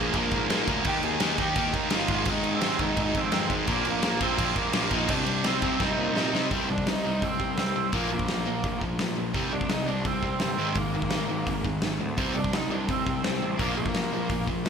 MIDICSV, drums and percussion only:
0, 0, Header, 1, 2, 480
1, 0, Start_track
1, 0, Key_signature, -3, "minor"
1, 0, Tempo, 353774
1, 1156, Time_signature, 4, 2, 24, 8
1, 19933, End_track
2, 0, Start_track
2, 0, Title_t, "Drums"
2, 183, Note_on_c, 9, 49, 76
2, 189, Note_on_c, 9, 36, 101
2, 319, Note_off_c, 9, 49, 0
2, 325, Note_off_c, 9, 36, 0
2, 423, Note_on_c, 9, 49, 57
2, 432, Note_on_c, 9, 36, 93
2, 559, Note_off_c, 9, 49, 0
2, 568, Note_off_c, 9, 36, 0
2, 678, Note_on_c, 9, 49, 85
2, 685, Note_on_c, 9, 38, 109
2, 814, Note_off_c, 9, 49, 0
2, 820, Note_off_c, 9, 38, 0
2, 917, Note_on_c, 9, 36, 94
2, 919, Note_on_c, 9, 49, 68
2, 1053, Note_off_c, 9, 36, 0
2, 1055, Note_off_c, 9, 49, 0
2, 1147, Note_on_c, 9, 49, 101
2, 1156, Note_on_c, 9, 36, 116
2, 1283, Note_off_c, 9, 49, 0
2, 1292, Note_off_c, 9, 36, 0
2, 1395, Note_on_c, 9, 49, 68
2, 1531, Note_off_c, 9, 49, 0
2, 1628, Note_on_c, 9, 49, 95
2, 1634, Note_on_c, 9, 38, 115
2, 1763, Note_off_c, 9, 49, 0
2, 1770, Note_off_c, 9, 38, 0
2, 1873, Note_on_c, 9, 49, 73
2, 1876, Note_on_c, 9, 36, 94
2, 2009, Note_off_c, 9, 49, 0
2, 2012, Note_off_c, 9, 36, 0
2, 2110, Note_on_c, 9, 49, 85
2, 2116, Note_on_c, 9, 36, 113
2, 2246, Note_off_c, 9, 49, 0
2, 2252, Note_off_c, 9, 36, 0
2, 2355, Note_on_c, 9, 36, 85
2, 2355, Note_on_c, 9, 49, 63
2, 2491, Note_off_c, 9, 36, 0
2, 2491, Note_off_c, 9, 49, 0
2, 2581, Note_on_c, 9, 49, 85
2, 2588, Note_on_c, 9, 38, 117
2, 2717, Note_off_c, 9, 49, 0
2, 2724, Note_off_c, 9, 38, 0
2, 2825, Note_on_c, 9, 49, 79
2, 2830, Note_on_c, 9, 36, 104
2, 2960, Note_off_c, 9, 49, 0
2, 2965, Note_off_c, 9, 36, 0
2, 3058, Note_on_c, 9, 49, 91
2, 3068, Note_on_c, 9, 36, 124
2, 3194, Note_off_c, 9, 49, 0
2, 3204, Note_off_c, 9, 36, 0
2, 3306, Note_on_c, 9, 49, 65
2, 3441, Note_off_c, 9, 49, 0
2, 3545, Note_on_c, 9, 49, 88
2, 3552, Note_on_c, 9, 38, 114
2, 3681, Note_off_c, 9, 49, 0
2, 3687, Note_off_c, 9, 38, 0
2, 3785, Note_on_c, 9, 49, 65
2, 3791, Note_on_c, 9, 36, 107
2, 3921, Note_off_c, 9, 49, 0
2, 3927, Note_off_c, 9, 36, 0
2, 4027, Note_on_c, 9, 49, 87
2, 4031, Note_on_c, 9, 36, 118
2, 4162, Note_off_c, 9, 49, 0
2, 4167, Note_off_c, 9, 36, 0
2, 4268, Note_on_c, 9, 49, 64
2, 4271, Note_on_c, 9, 36, 93
2, 4403, Note_off_c, 9, 49, 0
2, 4406, Note_off_c, 9, 36, 0
2, 4500, Note_on_c, 9, 49, 84
2, 4507, Note_on_c, 9, 38, 107
2, 4636, Note_off_c, 9, 49, 0
2, 4643, Note_off_c, 9, 38, 0
2, 4747, Note_on_c, 9, 49, 63
2, 4748, Note_on_c, 9, 36, 97
2, 4883, Note_off_c, 9, 49, 0
2, 4884, Note_off_c, 9, 36, 0
2, 4985, Note_on_c, 9, 49, 83
2, 4991, Note_on_c, 9, 36, 127
2, 5120, Note_off_c, 9, 49, 0
2, 5127, Note_off_c, 9, 36, 0
2, 5222, Note_on_c, 9, 49, 65
2, 5358, Note_off_c, 9, 49, 0
2, 5460, Note_on_c, 9, 49, 83
2, 5467, Note_on_c, 9, 38, 110
2, 5595, Note_off_c, 9, 49, 0
2, 5602, Note_off_c, 9, 38, 0
2, 5708, Note_on_c, 9, 49, 81
2, 5709, Note_on_c, 9, 36, 108
2, 5844, Note_off_c, 9, 49, 0
2, 5845, Note_off_c, 9, 36, 0
2, 5950, Note_on_c, 9, 36, 115
2, 5952, Note_on_c, 9, 49, 97
2, 6086, Note_off_c, 9, 36, 0
2, 6087, Note_off_c, 9, 49, 0
2, 6183, Note_on_c, 9, 49, 69
2, 6188, Note_on_c, 9, 36, 91
2, 6319, Note_off_c, 9, 49, 0
2, 6324, Note_off_c, 9, 36, 0
2, 6419, Note_on_c, 9, 49, 96
2, 6426, Note_on_c, 9, 38, 127
2, 6554, Note_off_c, 9, 49, 0
2, 6561, Note_off_c, 9, 38, 0
2, 6656, Note_on_c, 9, 49, 71
2, 6666, Note_on_c, 9, 36, 102
2, 6792, Note_off_c, 9, 49, 0
2, 6801, Note_off_c, 9, 36, 0
2, 6898, Note_on_c, 9, 49, 100
2, 6905, Note_on_c, 9, 36, 120
2, 7034, Note_off_c, 9, 49, 0
2, 7041, Note_off_c, 9, 36, 0
2, 7143, Note_on_c, 9, 49, 69
2, 7279, Note_off_c, 9, 49, 0
2, 7382, Note_on_c, 9, 49, 88
2, 7389, Note_on_c, 9, 38, 112
2, 7518, Note_off_c, 9, 49, 0
2, 7525, Note_off_c, 9, 38, 0
2, 7623, Note_on_c, 9, 49, 71
2, 7630, Note_on_c, 9, 36, 93
2, 7759, Note_off_c, 9, 49, 0
2, 7766, Note_off_c, 9, 36, 0
2, 7871, Note_on_c, 9, 36, 124
2, 7871, Note_on_c, 9, 38, 61
2, 8006, Note_off_c, 9, 38, 0
2, 8007, Note_off_c, 9, 36, 0
2, 8362, Note_on_c, 9, 38, 91
2, 8498, Note_off_c, 9, 38, 0
2, 8612, Note_on_c, 9, 38, 96
2, 8747, Note_off_c, 9, 38, 0
2, 8830, Note_on_c, 9, 46, 54
2, 8834, Note_on_c, 9, 36, 105
2, 8965, Note_off_c, 9, 46, 0
2, 8970, Note_off_c, 9, 36, 0
2, 9197, Note_on_c, 9, 36, 82
2, 9313, Note_on_c, 9, 46, 54
2, 9320, Note_on_c, 9, 38, 98
2, 9332, Note_off_c, 9, 36, 0
2, 9448, Note_off_c, 9, 46, 0
2, 9455, Note_off_c, 9, 38, 0
2, 9798, Note_on_c, 9, 36, 98
2, 9802, Note_on_c, 9, 46, 56
2, 9934, Note_off_c, 9, 36, 0
2, 9938, Note_off_c, 9, 46, 0
2, 10036, Note_on_c, 9, 36, 83
2, 10172, Note_off_c, 9, 36, 0
2, 10273, Note_on_c, 9, 46, 55
2, 10280, Note_on_c, 9, 38, 98
2, 10408, Note_off_c, 9, 46, 0
2, 10415, Note_off_c, 9, 38, 0
2, 10756, Note_on_c, 9, 46, 56
2, 10758, Note_on_c, 9, 36, 113
2, 10892, Note_off_c, 9, 46, 0
2, 10894, Note_off_c, 9, 36, 0
2, 11117, Note_on_c, 9, 36, 84
2, 11234, Note_on_c, 9, 46, 47
2, 11241, Note_on_c, 9, 38, 92
2, 11253, Note_off_c, 9, 36, 0
2, 11370, Note_off_c, 9, 46, 0
2, 11377, Note_off_c, 9, 38, 0
2, 11715, Note_on_c, 9, 46, 46
2, 11721, Note_on_c, 9, 36, 97
2, 11851, Note_off_c, 9, 46, 0
2, 11857, Note_off_c, 9, 36, 0
2, 11959, Note_on_c, 9, 36, 72
2, 12095, Note_off_c, 9, 36, 0
2, 12193, Note_on_c, 9, 46, 48
2, 12199, Note_on_c, 9, 38, 94
2, 12328, Note_off_c, 9, 46, 0
2, 12335, Note_off_c, 9, 38, 0
2, 12672, Note_on_c, 9, 46, 50
2, 12678, Note_on_c, 9, 36, 100
2, 12808, Note_off_c, 9, 46, 0
2, 12814, Note_off_c, 9, 36, 0
2, 13039, Note_on_c, 9, 36, 74
2, 13148, Note_on_c, 9, 46, 50
2, 13155, Note_on_c, 9, 38, 106
2, 13175, Note_off_c, 9, 36, 0
2, 13284, Note_off_c, 9, 46, 0
2, 13291, Note_off_c, 9, 38, 0
2, 13634, Note_on_c, 9, 46, 53
2, 13636, Note_on_c, 9, 36, 103
2, 13770, Note_off_c, 9, 46, 0
2, 13772, Note_off_c, 9, 36, 0
2, 13875, Note_on_c, 9, 36, 77
2, 14011, Note_off_c, 9, 36, 0
2, 14102, Note_on_c, 9, 46, 55
2, 14108, Note_on_c, 9, 38, 91
2, 14237, Note_off_c, 9, 46, 0
2, 14244, Note_off_c, 9, 38, 0
2, 14579, Note_on_c, 9, 46, 58
2, 14593, Note_on_c, 9, 36, 111
2, 14715, Note_off_c, 9, 46, 0
2, 14729, Note_off_c, 9, 36, 0
2, 14954, Note_on_c, 9, 36, 76
2, 15061, Note_on_c, 9, 46, 50
2, 15068, Note_on_c, 9, 38, 104
2, 15089, Note_off_c, 9, 36, 0
2, 15197, Note_off_c, 9, 46, 0
2, 15204, Note_off_c, 9, 38, 0
2, 15556, Note_on_c, 9, 46, 55
2, 15559, Note_on_c, 9, 36, 93
2, 15692, Note_off_c, 9, 46, 0
2, 15695, Note_off_c, 9, 36, 0
2, 15800, Note_on_c, 9, 36, 81
2, 15936, Note_off_c, 9, 36, 0
2, 16029, Note_on_c, 9, 46, 51
2, 16036, Note_on_c, 9, 38, 98
2, 16165, Note_off_c, 9, 46, 0
2, 16171, Note_off_c, 9, 38, 0
2, 16522, Note_on_c, 9, 46, 56
2, 16524, Note_on_c, 9, 36, 114
2, 16658, Note_off_c, 9, 46, 0
2, 16659, Note_off_c, 9, 36, 0
2, 16884, Note_on_c, 9, 36, 86
2, 16999, Note_on_c, 9, 46, 49
2, 17006, Note_on_c, 9, 38, 112
2, 17020, Note_off_c, 9, 36, 0
2, 17135, Note_off_c, 9, 46, 0
2, 17142, Note_off_c, 9, 38, 0
2, 17478, Note_on_c, 9, 46, 53
2, 17486, Note_on_c, 9, 36, 103
2, 17614, Note_off_c, 9, 46, 0
2, 17621, Note_off_c, 9, 36, 0
2, 17727, Note_on_c, 9, 36, 89
2, 17863, Note_off_c, 9, 36, 0
2, 17963, Note_on_c, 9, 46, 51
2, 17970, Note_on_c, 9, 38, 105
2, 18099, Note_off_c, 9, 46, 0
2, 18106, Note_off_c, 9, 38, 0
2, 18442, Note_on_c, 9, 46, 58
2, 18444, Note_on_c, 9, 36, 116
2, 18578, Note_off_c, 9, 46, 0
2, 18580, Note_off_c, 9, 36, 0
2, 18801, Note_on_c, 9, 36, 84
2, 18916, Note_on_c, 9, 46, 50
2, 18923, Note_on_c, 9, 38, 99
2, 18937, Note_off_c, 9, 36, 0
2, 19051, Note_off_c, 9, 46, 0
2, 19058, Note_off_c, 9, 38, 0
2, 19392, Note_on_c, 9, 46, 55
2, 19399, Note_on_c, 9, 36, 108
2, 19528, Note_off_c, 9, 46, 0
2, 19534, Note_off_c, 9, 36, 0
2, 19639, Note_on_c, 9, 36, 77
2, 19775, Note_off_c, 9, 36, 0
2, 19882, Note_on_c, 9, 46, 54
2, 19889, Note_on_c, 9, 38, 99
2, 19933, Note_off_c, 9, 38, 0
2, 19933, Note_off_c, 9, 46, 0
2, 19933, End_track
0, 0, End_of_file